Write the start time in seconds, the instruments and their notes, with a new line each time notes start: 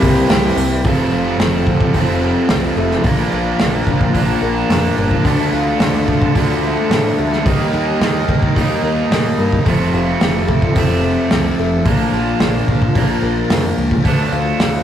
Already playing: distorted electric guitar C3, overdriven electric guitar C3 G3 A#3 C4 E4 G4, twelve-string acoustic guitar A#3
0.01 picked electric bass C2, twelve-string acoustic guitar G3, distorted electric guitar G3 C4, kick, open hi-hat
0.28 picked electric bass C2, distorted electric guitar C3 G3 C4, twelve-string acoustic guitar G3, snare, open hi-hat, tambourine
0.56 picked electric bass C2, twelve-string acoustic guitar G3, distorted electric guitar G3 C4, open hi-hat
0.83 picked electric bass F1, distorted electric guitar F2 C3 F3, twelve-string acoustic guitar F3, overdriven electric guitar A3, kick, open hi-hat
0.87 overdriven electric guitar C4
1.11 picked electric bass F1, twelve-string acoustic guitar F4
1.38 picked electric bass F1, distorted electric guitar F2 C3 F3, twelve-string acoustic guitar C4, snare, open hi-hat
1.66 distorted electric guitar C3 F3, twelve-string acoustic guitar F3, kick
1.80 kick
1.93 picked electric bass F1, distorted electric guitar F2 C3 F3, overdriven electric guitar A3 C4, twelve-string acoustic guitar C4, kick, open hi-hat
2.22 twelve-string acoustic guitar A3
2.48 picked electric bass C2, distorted electric guitar F2 C3 F3, twelve-string acoustic guitar F3, snare, open hi-hat
2.76 picked electric bass F1, twelve-string acoustic guitar A3
2.91 snare
3.02 picked electric bass A#1, distorted electric guitar A#2 F3 A#3, twelve-string acoustic guitar F3, overdriven electric guitar D4, kick, open hi-hat
3.32 picked electric bass A#1, twelve-string acoustic guitar F4
3.59 picked electric bass A#1, distorted electric guitar A#2 F3 A#3, twelve-string acoustic guitar D4, snare, open hi-hat
3.87 picked electric bass A#1, twelve-string acoustic guitar F3, distorted electric guitar F3 A#3, kick
4.01 kick
4.14 picked electric bass A#1, distorted electric guitar A#2 F3 A#3, twelve-string acoustic guitar D4, overdriven electric guitar D4, kick, open hi-hat
4.41 picked electric bass A#1, twelve-string acoustic guitar A#3
4.69 picked electric bass F2, distorted electric guitar A#2 F3 A#3, twelve-string acoustic guitar F3, snare, open hi-hat
4.97 picked electric bass G1, twelve-string acoustic guitar A#3
5.11 kick
5.23 picked electric bass D2, distorted electric guitar D3 A3 D4, overdriven electric guitar F3, twelve-string acoustic guitar F3, kick, open hi-hat
5.52 picked electric bass D2, twelve-string acoustic guitar F4
5.79 picked electric bass D2, distorted electric guitar D3 A3 D4, twelve-string acoustic guitar D4, snare, open hi-hat
6.06 twelve-string acoustic guitar F3, distorted electric guitar A3 D4, kick
6.22 kick
6.34 picked electric bass D2, distorted electric guitar D3 A3 D4, overdriven electric guitar F3, twelve-string acoustic guitar D4, kick, open hi-hat
6.64 twelve-string acoustic guitar A3
6.90 picked electric bass A2, distorted electric guitar D3 A3 D4, twelve-string acoustic guitar F3, snare, open hi-hat
7.18 picked electric bass D2, twelve-string acoustic guitar A3
7.33 snare
7.45 picked electric bass D#2, distorted electric guitar D#3 A#3 D#4, twelve-string acoustic guitar D#3, overdriven electric guitar G3, kick, open hi-hat
7.73 picked electric bass D#2, twelve-string acoustic guitar G4
7.99 picked electric bass D#2, distorted electric guitar D#3 A#3 D#4, snare, open hi-hat
8.27 picked electric bass D#2, twelve-string acoustic guitar D#3, distorted electric guitar A#3 D#4, kick
8.43 kick
8.54 picked electric bass D#2, distorted electric guitar D#3 A#3 D#4, overdriven electric guitar G3, kick, open hi-hat
8.83 picked electric bass D#2, twelve-string acoustic guitar A#3
9.10 picked electric bass A#2, distorted electric guitar D#3 A#3 D#4, twelve-string acoustic guitar D#3, snare, open hi-hat
9.37 picked electric bass G2, twelve-string acoustic guitar A#3
9.52 kick
9.65 picked electric bass F1, distorted electric guitar F2 C3 F3, twelve-string acoustic guitar A3, overdriven electric guitar A3 C4, kick, open hi-hat
9.93 picked electric bass F1, twelve-string acoustic guitar F4
10.20 picked electric bass F1, distorted electric guitar F2 C3 F3, twelve-string acoustic guitar C4, snare, open hi-hat
10.48 distorted electric guitar C3 F3, twelve-string acoustic guitar A3, kick
10.62 kick
10.75 picked electric bass F1, distorted electric guitar F2 C3 F3, overdriven electric guitar A3 C4, twelve-string acoustic guitar C4, kick, open hi-hat
11.04 twelve-string acoustic guitar A3
11.30 picked electric bass C2, distorted electric guitar F2 C3 F3, twelve-string acoustic guitar A3, snare, open hi-hat
11.58 picked electric bass F1, twelve-string acoustic guitar A3
11.85 picked electric bass A#1, distorted electric guitar A#2 F3 A#3, twelve-string acoustic guitar F3, overdriven electric guitar D4, kick, open hi-hat
12.12 picked electric bass A#1, twelve-string acoustic guitar F4
12.40 picked electric bass A#1, distorted electric guitar A#2 F3 A#3, twelve-string acoustic guitar D4, snare, open hi-hat
12.68 picked electric bass A#1, twelve-string acoustic guitar F3, distorted electric guitar F3 A#3, kick
12.82 kick
12.95 picked electric bass A#1, distorted electric guitar A#2 F3 A#3, twelve-string acoustic guitar D4, overdriven electric guitar D4, kick, open hi-hat
13.22 picked electric bass A#1, twelve-string acoustic guitar A#3
13.49 picked electric bass F2, distorted electric guitar A#2 F3 A#3, twelve-string acoustic guitar F3, snare, open hi-hat
13.78 picked electric bass C#2, twelve-string acoustic guitar A#3
13.91 kick
14.04 picked electric bass D2, distorted electric guitar D3 A3 D4, overdriven electric guitar F3, twelve-string acoustic guitar F3, kick, open hi-hat
14.32 picked electric bass D2, twelve-string acoustic guitar F4
14.59 picked electric bass D2, distorted electric guitar D3 A3 D4, twelve-string acoustic guitar D4, snare, open hi-hat